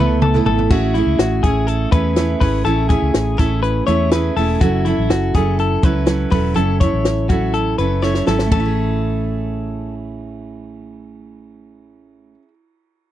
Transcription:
Already playing: fingered electric bass C#2, analog synth pad A4 E5 B5 E6, clean electric guitar B4
0.00 steel-string acoustic guitar A3 B3 E4 A4
0.22 clean electric guitar A4, mid tom
0.34 steel-string acoustic guitar A3 B3 E4 A4, floor tom
0.46 fingered electric bass G#1, clean electric guitar A4, floor tom
0.58 floor tom
0.70 fingered electric bass A1, steel-string acoustic guitar A3 C#4 E4 G#4, clean electric guitar F#4, kick, crash
0.94 steel-string acoustic guitar A3 C#4 E4 G#4, clean electric guitar E4, closed hi-hat
1.06 fingered electric bass C#2
1.19 fingered electric bass A1, clean electric guitar F#4, snare, closed hi-hat
1.43 fingered electric bass A1, steel-string acoustic guitar A3 C#4 E4 G#4, clean electric guitar G#4, kick, closed hi-hat
1.67 clean electric guitar A4, closed hi-hat
1.92 fingered electric bass E2, steel-string acoustic guitar A3 C#4 E4 G#4, clean electric guitar B4, kick, closed hi-hat
2.16 steel-string acoustic guitar A3 C#4 E4 G#4, snare, closed hi-hat
2.40 fingered electric bass G#1, steel-string acoustic guitar A3 C#4 E4 G#4, clean electric guitar B4, kick, open hi-hat
2.65 fingered electric bass A1, steel-string acoustic guitar A3 C#4 E4 G#4, clean electric guitar A4, closed hi-hat
2.89 steel-string acoustic guitar A3 C#4 E4 G#4, clean electric guitar G#4, kick, closed hi-hat
3.02 fingered electric bass C#2
3.14 fingered electric bass A1, snare, closed hi-hat
3.37 fingered electric bass A1, steel-string acoustic guitar A3 C#4 E4 G#4, clean electric guitar A4, kick, snare, closed hi-hat
3.63 clean electric guitar B4, closed hi-hat
3.87 fingered electric bass E2, steel-string acoustic guitar A3 C#4 E4 G#4, clean electric guitar C#5, closed hi-hat
4.11 steel-string acoustic guitar A3 C#4 E4 G#4, clean electric guitar B4, snare, closed hi-hat
4.36 fingered electric bass E1, steel-string acoustic guitar A3 C#4 E4 G#4, clean electric guitar A4, open hi-hat
4.61 fingered electric bass F#1, steel-string acoustic guitar F#3 C#4 E4 A4, clean electric guitar F#4, kick, closed hi-hat
4.85 steel-string acoustic guitar F#3 C#4 E4 A4, clean electric guitar E4, closed hi-hat
4.98 fingered electric bass A1
5.10 fingered electric bass F#1, clean electric guitar F#4, snare, closed hi-hat
5.34 fingered electric bass F#1, steel-string acoustic guitar F#3 C#4 E4 A4, clean electric guitar G#4, kick, closed hi-hat
5.59 clean electric guitar A4, closed hi-hat
5.83 fingered electric bass C#2, steel-string acoustic guitar F#3 C#4 E4 A4, clean electric guitar B4, kick, closed hi-hat
6.06 steel-string acoustic guitar F#3 C#4 E4 A4, snare, closed hi-hat
6.30 fingered electric bass E1, steel-string acoustic guitar F#3 C#4 E4 A4, clean electric guitar B4, kick, open hi-hat
6.54 fingered electric bass F#1, steel-string acoustic guitar F#3 C#4 E4 A4, clean electric guitar A4, closed hi-hat
6.80 steel-string acoustic guitar F#3 C#4 E4 A4, clean electric guitar C#5, kick, closed hi-hat
6.93 fingered electric bass A1
7.05 snare, closed hi-hat
7.29 steel-string acoustic guitar F#3 C#4 E4 A4, clean electric guitar F#4, kick, closed hi-hat
7.54 clean electric guitar A4, closed hi-hat
7.78 fingered electric bass F#1, steel-string acoustic guitar F#3 C#4 E4 A4, clean electric guitar B4, closed hi-hat
8.02 steel-string acoustic guitar F#3 C#4 E4 A4, clean electric guitar C#5, snare
8.14 snare
8.26 fingered electric bass G#1, steel-string acoustic guitar F#3 C#4 E4 A4, clean electric guitar A4, snare
8.39 snare
8.46 steel-string acoustic guitar A3
8.52 fingered electric bass A1, steel-string acoustic guitar C#4, clean electric guitar A4, kick, floor tom, ride bell
8.60 steel-string acoustic guitar E4
8.65 steel-string acoustic guitar G#4

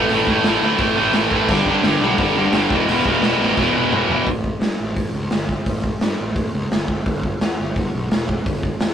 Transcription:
Already playing: distorted electric guitar E3 A3
0.09 picked electric bass A1, distorted electric guitar A2 E3 A3, open hi-hat
0.27 picked electric bass A1, distorted electric guitar A2 E3 A3, kick
0.43 picked electric bass A1, distorted electric guitar A2 E3, snare, open hi-hat
0.47 distorted electric guitar A3
0.62 picked electric bass D2, distorted electric guitar A2 E3 A3
0.78 picked electric bass A1, distorted electric guitar A2 E3 A3, kick, open hi-hat
0.96 picked electric bass A1, distorted electric guitar A2 E3 A3
1.13 picked electric bass A1, distorted electric guitar A2 E3 A3, snare, open hi-hat
1.31 picked electric bass A1, distorted electric guitar A2 E3 A3, kick
1.48 picked electric bass G1, distorted electric guitar G2 D3 G3, kick, crash
1.66 picked electric bass G1, distorted electric guitar G2 D3 G3, kick
1.83 picked electric bass G1, distorted electric guitar G2 D3 G3, snare, open hi-hat
2.01 picked electric bass B1, distorted electric guitar G2 D3 G3
2.18 picked electric bass G1, distorted electric guitar G2 D3 G3, kick, open hi-hat
2.35 picked electric bass G1, distorted electric guitar G2 D3 G3
2.53 picked electric bass G1, distorted electric guitar G2 D3 G3, snare, open hi-hat
2.70 picked electric bass E1, distorted electric guitar E2 B2 E3, kick
2.88 picked electric bass E1, distorted electric guitar E2 B2 E3, open hi-hat
3.05 picked electric bass E1, distorted electric guitar E2 B2 E3, kick
3.22 picked electric bass E1, distorted electric guitar E2 B2 E3, snare, open hi-hat
3.40 picked electric bass A1, distorted electric guitar E2 B2 E3
3.57 picked electric bass E1, distorted electric guitar E2 B2 E3, kick, snare
3.75 picked electric bass E1, distorted electric guitar E2 B2 E3, high tom
3.91 picked electric bass E1, distorted electric guitar E2 B2 E3, mid tom
4.08 picked electric bass E1, distorted electric guitar E2 B2 E3, floor tom
4.27 picked electric bass A1, kick, open hi-hat
4.44 kick
4.60 picked electric bass G2, snare, open hi-hat
4.80 picked electric bass A1
4.96 picked electric bass A1, kick, open hi-hat
5.14 picked electric bass C#2
5.30 picked electric bass G1, snare, open hi-hat
5.49 kick
5.66 picked electric bass A1, kick, open hi-hat
5.84 kick
6.01 picked electric bass G2, snare, open hi-hat
6.21 picked electric bass A1
6.36 picked electric bass A1, kick, open hi-hat
6.54 picked electric bass C#2
6.71 picked electric bass G1, snare, open hi-hat
6.88 kick
7.06 picked electric bass G1, kick, open hi-hat
7.23 kick
7.41 picked electric bass E2, snare, open hi-hat
7.60 picked electric bass G1
7.76 picked electric bass G1, kick, open hi-hat
7.95 picked electric bass B1
8.11 picked electric bass E1, snare, open hi-hat
8.29 kick
8.46 picked electric bass G1, kick, open hi-hat
8.63 kick
8.80 picked electric bass E2, snare, open hi-hat

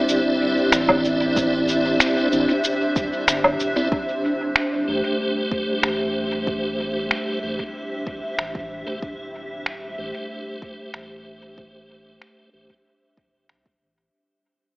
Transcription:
Already playing: tonewheel organ C4 E4 D5, ambient pad D4 G4 C5 E5
0.09 cabasa
0.72 sub bass A1, finger snap, cabasa
0.89 kick, low woodblock
1.04 cabasa
1.36 kick, cabasa
1.68 cabasa
2.00 finger snap, cabasa
2.32 sub bass A1, tonewheel organ C4 E4 D5, cabasa
2.64 cabasa
2.96 sub bass E1, kick, cabasa
3.28 sub bass G1, finger snap, cabasa
3.44 kick, low woodblock
3.60 sub bass E1, cabasa
3.76 tonewheel organ C4 E4 D5
3.92 kick
3.97 ambient pad G4
4.56 finger snap
4.88 sub bass A1, tonewheel organ A3 G4 C5
5.12 ambient pad E5
5.51 kick
5.83 sub bass A1, finger snap
6.47 kick
7.11 finger snap
7.43 sub bass A1, tonewheel organ A3 G4 C5
7.59 kick
8.07 sub bass E1, kick
8.39 sub bass A1, finger snap
8.55 kick
8.87 sub bass E1, tonewheel organ A3 G4 C5
9.02 kick
9.66 finger snap
9.98 sub bass A1, tonewheel organ A3 G4 C5
10.62 kick
10.94 sub bass A1, finger snap
11.58 kick
12.22 finger snap
12.53 sub bass A1, tonewheel organ A3 G4 C5
12.70 kick
13.17 sub bass E1, kick
13.49 sub bass C2, finger snap
13.66 sub bass E1, kick
13.81 sub bass A1

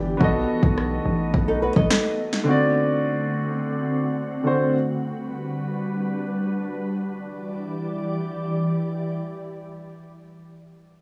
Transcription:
Already playing: 808-style bass G1, grand piano E3 E4 G4 D5, ambient pad E3 B3 D4 G4
0.17 808-style bass B1, ambient pad A3 D#4, grand piano B3 F#4, kick
0.22 grand piano A4 D#5
0.63 808-style bass B1, kick
0.78 cross-stick
1.05 808-style bass A1
1.34 808-style bass B1, kick
1.48 nylon-string guitar D#4 A4
1.62 nylon-string guitar F#4 B4
1.76 808-style bass B1, nylon-string guitar A4 D#5, kick
1.91 cross-stick, snare
2.33 snare
2.44 grand piano D3 C4, ambient pad D3 C4 F#4
2.48 grand piano F#4 D5
4.43 grand piano D3 C4 F#4 C5
4.73 ambient pad G3 D4 B4
7.00 ambient pad E3 E4 G4 D5

